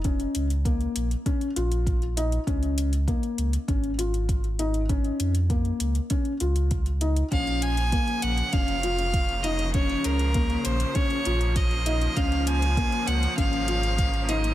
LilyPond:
<<
  \new Staff \with { instrumentName = "Violin" } { \time 4/4 \key bes \minor \tempo 4 = 99 r1 | r1 | r1 | f''8 aes''4 ges''8 f''4. ees''8 |
des''8 bes'4 c''8 des''4 ees''4 | f''8 aes''4 ges''8 f''4. ees''8 | }
  \new Staff \with { instrumentName = "Felt piano" } { \time 4/4 \key bes \minor des'4 bes4 des'8 f'4 ees'8 | des'4 bes4 des'8 f'4 ees'8 | des'4 bes4 des'8 f'4 ees'8 | des'4 bes4 des'8 f'4 ees'8 |
des'4 bes4 des'8 f'4 ees'8 | des'4 bes4 des'8 f'4 ees'8 | }
  \new Staff \with { instrumentName = "String section" } { \clef bass \time 4/4 \key bes \minor << { r1 | r1 | r1 | <f bes>1~ |
<f bes>1~ | <f bes>1 | } \\ { r1 | r1 | r1 | des1~ |
des1 | des1 | } >> }
  \new Staff \with { instrumentName = "Sub bass" } { \clef bass \time 4/4 \key bes \minor f,,8 des,4 bes,,8 r8 bes,,4. | des,4 r8 des,8 aes,,2~ | aes,,8 f,4 des,8 r8 des,4. | bes,,4 r8 bes,,8 f,,2~ |
f,,8 des,4 bes,,8 r8 bes,,4. | des,4 r8 des,8 aes,,2 | }
  \new DrumStaff \with { instrumentName = "Drums" } \drummode { \time 4/4 <hh bd>16 hh16 hh16 hh16 <hh bd>16 hh16 hh16 hh16 <hh bd>16 hh16 hh16 hh16 <hh bd>16 hh16 hh16 hh16 | <hh bd>16 hh16 hh16 hh16 <hh bd>16 hh16 hh16 hh16 <hh bd>16 hh16 hh16 hh16 <hh bd>16 hh16 hh16 hh16 | <hh bd>16 hh16 hh16 hh16 <hh bd>16 hh16 hh16 hh16 <hh bd>16 hh16 hh16 hh16 <hh bd>16 hh16 hh16 hh16 | <hh bd>16 hh16 hh16 hh16 <hh bd>16 hh16 hh16 hh16 <hh bd>16 hh16 hh16 hh16 <hh bd>16 hh16 hh16 hh16 |
<hh bd>16 hh16 hh16 hh16 <hh bd>16 hh16 hh16 hh16 <hh bd>16 hh16 hh16 hh16 <hh bd>16 hh16 hh16 hh16 | <hh bd>16 hh16 hh16 hh16 <hh bd>16 hh16 hh16 hh16 <hh bd>16 hh16 hh16 hh16 <hh bd>16 hh16 hh16 hh16 | }
>>